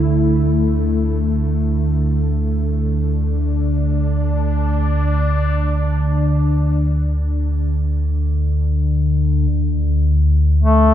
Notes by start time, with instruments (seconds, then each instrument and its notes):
Already playing: synth drone D2 D3, analog synth pad D3 A3 E4
2.66 analog synth pad D4
9.51 synth drone D2 D3
10.59 duduk A3